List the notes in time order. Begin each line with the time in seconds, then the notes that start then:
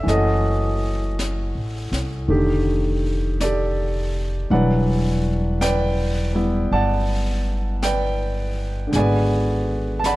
Already playing: A4 D5
0.03 F#1 E3 A3
0.08 C#4 A4 D#5, brush sweep, snare
0.14 F#4
1.19 brush sweep, snare, hi-hat pedal
1.55 A1
1.92 C2, snare
2.28 F1 D3 D#3 A3 G4, brush sweep
3.41 G4 A4 D5, brush sweep, snare, hi-hat pedal
4.50 E1 E3 F#3 G3 D4 B4 D5 F#5, brush sweep
5.61 B4 D5 G5, brush sweep, snare, hi-hat pedal
6.33 G3 B3 E4
6.71 G1 D5 F#5 A5, brush sweep
7.83 B4 D5 G5, brush sweep, snare, hi-hat pedal
8.87 D3 G#3
8.93 G#1 B3 D5 G#5, brush sweep, snare
8.97 F#4 B4
9.99 A5
10.04 D5 F#5 B5, brush sweep, snare, hi-hat pedal